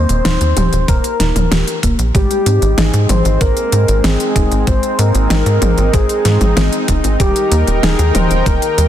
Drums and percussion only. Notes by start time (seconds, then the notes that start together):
0.09 closed hi-hat
0.25 snare, closed hi-hat
0.41 closed hi-hat
0.57 closed hi-hat, mid tom
0.73 closed hi-hat
0.88 kick, closed hi-hat
1.04 closed hi-hat
1.20 snare, closed hi-hat
1.36 closed hi-hat, mid tom
1.52 snare, closed hi-hat
1.67 closed hi-hat
1.83 kick, closed hi-hat
1.99 closed hi-hat
2.15 kick, closed hi-hat
2.31 closed hi-hat
2.46 closed hi-hat
2.62 closed hi-hat
2.78 snare, closed hi-hat
2.94 closed hi-hat
3.09 closed hi-hat, mid tom
3.25 closed hi-hat
3.41 kick, closed hi-hat
3.57 closed hi-hat
3.72 closed hi-hat
3.88 closed hi-hat
4.04 snare, closed hi-hat
4.20 closed hi-hat
4.36 kick, closed hi-hat
4.52 closed hi-hat
4.67 kick, closed hi-hat
4.83 closed hi-hat
4.99 closed hi-hat
5.15 closed hi-hat
5.30 snare, closed hi-hat
5.46 closed hi-hat
5.62 closed hi-hat, mid tom
5.78 closed hi-hat
5.93 kick, closed hi-hat
6.09 closed hi-hat
6.25 snare, closed hi-hat
6.41 closed hi-hat, mid tom
6.57 snare, closed hi-hat
6.72 closed hi-hat
6.88 kick, closed hi-hat
7.04 closed hi-hat
7.20 kick, closed hi-hat
7.36 closed hi-hat
7.52 closed hi-hat
7.67 closed hi-hat
7.83 snare, closed hi-hat
7.99 closed hi-hat
8.15 closed hi-hat, mid tom
8.31 closed hi-hat
8.46 kick, closed hi-hat
8.62 closed hi-hat
8.78 closed hi-hat